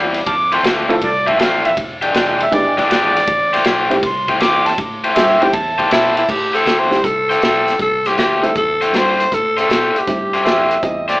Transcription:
Already playing: fingered electric bass E2, overdriven electric guitar A2 G3 C4 E4
0.14 snare, ride
0.26 fingered electric bass F2, harmonica F5 A5 D6, kick, ride
0.52 overdriven electric guitar F3 A3 C4 E4, harmonica C6, ride
0.63 fingered electric bass D2, overdriven electric guitar F3 A3 C4 E4, snare, ride
0.89 honky-tonk piano A3 C4 E4 F4 A4, ride
1.01 fingered electric bass C2, harmonica F4 A4 D5, kick, ride
1.27 overdriven electric guitar F3 A3 C4 E4, harmonica E5, kick, ride
1.38 fingered electric bass A1, overdriven electric guitar F3 A3 C4 E4, harmonica F5, snare, ride
1.65 ride
1.77 fingered electric bass E1, kick, ride
2.02 overdriven electric guitar E3 G#3 D4 G4, ride
2.13 fingered electric bass F1, overdriven electric guitar E3 G#3 D4 G4, harmonica G5, snare, ride
2.40 harmonica E5, ride
2.51 fingered electric bass G1, honky-tonk piano G#3 B3 D4 E4 G4, harmonica D5, kick, snare, ride
2.78 overdriven electric guitar E3 G#3 D4 G4, harmonica D5, muted fingered electric bass stroke, kick, snare, ride
2.89 fingered electric bass G#1, overdriven electric guitar E3 G#3 D4 G4, snare, ride
3.17 snare, ride
3.27 fingered electric bass A1, kick, ride
3.53 overdriven electric guitar A3 E4 G4 C5, snare, ride
3.64 fingered electric bass B1, overdriven electric guitar A3 E4 G4 C5, snare, ride
3.90 honky-tonk piano G3 A3 C4 E4 G4, ride
4.03 fingered electric bass C2, harmonica C6, kick, snare, ride
4.28 overdriven electric guitar A3 E4 G4 C5, kick, ride
4.40 fingered electric bass E2, overdriven electric guitar A3 E4 G4 C5, harmonica D6, snare, ride
4.66 harmonica A5, snare, ride
4.78 fingered electric bass A2, kick, ride
5.04 overdriven electric guitar A3 E4 G4 C5, ride
5.15 fingered electric bass G2, overdriven electric guitar A3 E4 G4 C5, harmonica G#4 C5 E5, snare, ride
5.41 honky-tonk piano G3 A3 C4 E4 G4, harmonica G5, muted fingered electric bass stroke, ride
5.53 fingered electric bass E2, harmonica A5, kick, ride
5.78 overdriven electric guitar A3 E4 G4 C5, kick, ride
5.91 fingered electric bass B2, overdriven electric guitar A3 E4 G4 C5, tenor saxophone E4, snare, ride
6.17 tenor saxophone E4, ride
6.29 fingered electric bass A2, tenor saxophone G4, kick, crash
6.53 overdriven electric guitar A3 E4 G4 C5, tenor saxophone A4, closed hi-hat
6.65 fingered electric bass D2, overdriven electric guitar A3 E4 G4 C5, snare, closed hi-hat
6.80 tenor saxophone C5
6.90 honky-tonk piano G3 A3 C4 E4 G4, snare, closed hi-hat
7.04 fingered electric bass C2, tenor saxophone A4, kick, closed hi-hat
7.29 overdriven electric guitar A3 E4 G4 C5, closed hi-hat
7.42 fingered electric bass B1, overdriven electric guitar A3 E4 G4 C5, snare, closed hi-hat
7.68 snare, closed hi-hat
7.79 fingered electric bass C2, tenor saxophone A4, kick, closed hi-hat
8.05 overdriven electric guitar A3 E4 G4 C5, tenor saxophone G4, snare, closed hi-hat
8.17 fingered electric bass D2, overdriven electric guitar A3 E4 G4 C5, tenor saxophone G4, snare, closed hi-hat
8.42 honky-tonk piano G3 A3 C4 E4 G4, tenor saxophone A4, closed hi-hat
8.56 fingered electric bass E2, tenor saxophone A4, kick, closed hi-hat
8.81 overdriven electric guitar A3 E4 G4 C5, closed hi-hat
8.92 fingered electric bass G2, overdriven electric guitar A3 E4 G4 C5, snare, closed hi-hat
8.97 tenor saxophone C5
9.20 closed hi-hat
9.32 fingered electric bass A2, tenor saxophone A4, kick, closed hi-hat
9.57 overdriven electric guitar A3 E4 G4 C5, tenor saxophone A4, closed hi-hat
9.69 fingered electric bass B2, overdriven electric guitar A3 E4 G4 C5, snare, closed hi-hat
9.95 tenor saxophone G4, muted fingered electric bass stroke, closed hi-hat
10.07 fingered electric bass G2, honky-tonk piano G3 A3 C4 E4 G4, kick, snare, closed hi-hat
10.33 overdriven electric guitar A3 E4 G4 C5, closed hi-hat
10.45 fingered electric bass F2, overdriven electric guitar A3 E4 G4 C5, harmonica G#4 C5 E5, snare, closed hi-hat
10.71 closed hi-hat
10.82 fingered electric bass E2, honky-tonk piano G3 A3 C4 E4 G4, harmonica D#5, kick, closed hi-hat
11.08 overdriven electric guitar A3 E4 G4 C5, harmonica D5, snare, closed hi-hat

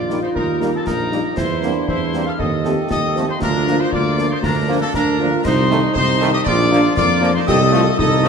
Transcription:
Already playing: tuba A#1, woodwind section F4, euphonium F4, trumpet section D5, piccolo D6
0.09 french horn section G3 A#3 D#4, trombone section G3 A#3, snare
0.23 woodwind section D#4, trumpet section C5, piccolo C6
0.35 tuba D#2, woodwind section D#4, trumpet section A#4, piccolo A#5, concert bass drum
0.60 french horn section G3 A#3 D#4, trombone section G3 A#3, snare
0.74 woodwind section C4, trumpet section A4, piccolo A5
0.85 tuba A#1, woodwind section D#4, trumpet section A#4, concert bass drum, snare
0.89 piccolo A#5
1.11 french horn section G3 A#3 D#4, trombone section G3 A#3, snare
1.36 tuba E2, woodwind section E4, euphonium E4, trumpet section C5, piccolo C6, concert bass drum, snare, crash
1.62 french horn section G3 A#3 C4, trombone section G3 A#3, euphonium D4, snare
1.88 tuba E2, woodwind section E4, trumpet section C5, concert bass drum
1.92 piccolo C6
2.13 trombone section G3 A#3, french horn section G3 A#3 C4, snare
2.26 woodwind section A4, trumpet section F5, piccolo F6
2.38 tuba D#2, euphonium C4, woodwind section A4, trumpet section D#5, piccolo D#6, concert bass drum
2.63 trombone section F3 A3, french horn section F3 A3 C4, euphonium G4, snare
2.90 tuba D#2, woodwind section A4, trumpet section D#5, piccolo D#6, concert bass drum, snare
3.16 french horn section F3 A3 C4, trombone section F3 A3, snare
3.28 woodwind section D#4, trumpet section C5, piccolo C6
3.41 tuba D2, woodwind section D4, euphonium F4, trumpet section A#4, piccolo A#5, concert bass drum, snare, crash
3.66 french horn section F3 A#3 D4, trombone section F3 A#3, snare
3.79 woodwind section D#4, trumpet section C5, piccolo C6
3.91 tuba D2, euphonium A#3, woodwind section F4, trumpet section D5, piccolo D6, concert bass drum
4.17 trombone section F3 A#3, french horn section F3 A#3 D4, snare
4.31 woodwind section D#4, trumpet section C5, piccolo C6
4.43 tuba D2, woodwind section D4, trumpet section A#4, piccolo A#5, concert bass drum, snare
4.69 trombone section F3 A#3, french horn section F3 A#3 D4
4.82 woodwind section C4, trumpet section A4, piccolo A5
4.94 tuba D2, euphonium D4, woodwind section D4, trumpet section A#4, piccolo A#5, concert bass drum, snare
5.18 trombone section F3 A#3, french horn section F3 A#3 D4, euphonium F4
5.44 tuba C2, euphonium D#4, woodwind section D#4, trumpet section C5, piccolo C6, concert bass drum, snare, crash
5.70 trombone section D#3 A3, french horn section D#3 A3 D#4, euphonium D#4, snare
5.94 tuba C2, woodwind section D#4, trumpet section C5, piccolo C6, concert bass drum
6.20 trombone section D#3 A3, french horn section D#3 A3 D#4, snare
6.33 woodwind section G4, trumpet section D#5, piccolo D#6
6.44 tuba A#1, euphonium D4, woodwind section F4, trumpet section D5, piccolo D6, concert bass drum
6.71 trombone section F3 A#3, french horn section F3 A#3 D4, snare
6.96 tuba F2, euphonium A#3, woodwind section F4, trumpet section D5, piccolo D6, concert bass drum, snare
7.21 trombone section F3 A#3, french horn section F3 A#3 D4, snare
7.35 woodwind section D#4, trumpet section C5, piccolo C6
7.46 tuba C2, euphonium G4, woodwind section A4, trumpet section D#5, piccolo D#6, concert bass drum, snare, crash
7.72 trombone section F3 A3, french horn section F3 A3 F4, euphonium F4, snare
7.97 tuba C2, euphonium D#4, woodwind section A4, trumpet section D#5, piccolo D#6, concert bass drum
8.22 trombone section F3 A3, french horn section F3 A3 F4, snare

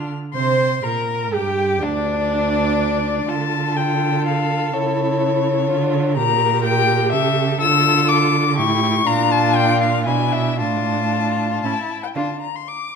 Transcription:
Already playing: cello D3, violin F6
0.34 cello C3, violin C5 C6, viola C5
0.84 cello A#2, violin A#4 A#5, viola A#4
1.33 cello G2, viola G4, violin G4 G5
1.82 cello D2, viola D4, violin D4 D5
3.29 cello D3, viola F4, violin A4 A5
3.77 violin G5
4.26 violin F5
4.74 cello C#3, viola E4, violin C#5
5.70 cello D3, viola F4
6.16 cello A#2, viola G4, violin A#4 A#5
6.64 violin G5
7.12 cello C#3, violin A4 E5
7.61 cello D3, viola F4, violin E6
8.09 violin D6
8.57 cello A2, viola E4, violin G4 C#6
9.06 cello A#2, viola D4, violin F4 A#5
9.31 violin A5
9.57 violin G5
9.81 violin F5
10.06 cello B2, viola D4, violin E4 G#5
10.33 violin E5
10.60 cello A2, viola D4, violin F4 A5
11.63 cello A2, viola C#4, violin E4 A5
12.03 violin G5
12.14 cello D3, viola D4, violin F4 A5
12.41 violin A#5
12.56 violin C6
12.68 violin D6

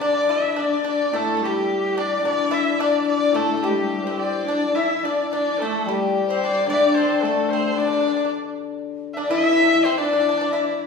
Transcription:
Already playing: hammered dulcimer G3
0.00 hammered dulcimer D3, horsehead fiddle D4, pipa D4, dizi D5, erhu D5
0.29 pipa E4, erhu E5
0.56 pipa D4, horsehead fiddle D4, dizi D5, erhu D5
0.84 pipa D4, horsehead fiddle D4, erhu D5
1.12 hammered dulcimer A2, horsehead fiddle A3, pipa A3, dizi A4, erhu A4
1.37 horsehead fiddle G3, pipa A3
1.43 pipa G3, dizi G4, erhu G4
1.49 dizi E4
1.55 dizi G4
1.96 pipa D4, dizi D5, erhu D5
2.23 hammered dulcimer D3, horsehead fiddle D4, pipa D4, dizi D5, erhu D5
2.51 pipa E4, erhu E5
2.77 horsehead fiddle D4, pipa D4, erhu D5, dizi D5
3.06 dizi D5, erhu D5
3.32 hammered dulcimer A2, horsehead fiddle A3, pipa A3, dizi A4, erhu A4
3.57 horsehead fiddle G3, pipa A3
3.62 pipa G3, dizi G4, erhu G4
4.03 pipa C4, dizi C5
4.11 dizi A4
4.18 dizi C5, erhu D5
4.47 horsehead fiddle D4, pipa D4, erhu D5, dizi D5
4.75 pipa E4, horsehead fiddle E4, erhu E5, dizi E5
5.03 horsehead fiddle D4, pipa D4, dizi D5, erhu D5
5.30 pipa D4, dizi D5, erhu D5
5.58 horsehead fiddle A3, pipa A3, dizi A4, erhu A4
5.85 hammered dulcimer G3, horsehead fiddle G3, pipa G3, erhu G4
6.27 pipa C4, dizi C5
6.41 pipa D4, erhu D5
6.66 hammered dulcimer D3, horsehead fiddle D4, pipa D4, dizi D5, erhu D5
6.73 dizi E5
6.79 dizi D5
6.95 pipa C4, erhu C5
7.21 horsehead fiddle A3, dizi A4, erhu A4
7.25 pipa A3
7.49 dizi C5, erhu C5
7.53 pipa C4
7.76 hammered dulcimer D3, horsehead fiddle D4, pipa D4, dizi D5, erhu D5
7.88 pipa D4
7.93 pipa D4
8.01 pipa D4
8.08 pipa D4
8.17 pipa D4
8.25 pipa D4
9.13 horsehead fiddle D4, pipa D4, dizi D5, erhu E5
9.18 erhu D5
9.29 hammered dulcimer E3, horsehead fiddle E4, pipa E4, dizi E5, erhu E5
9.64 pipa D4
9.85 pipa C4, erhu C5
9.98 pipa D4, horsehead fiddle D4, erhu D5, dizi D5
10.05 pipa D4
10.13 pipa D4
10.21 pipa D4
10.29 pipa D4
10.38 pipa D4
10.52 pipa E4, dizi E5

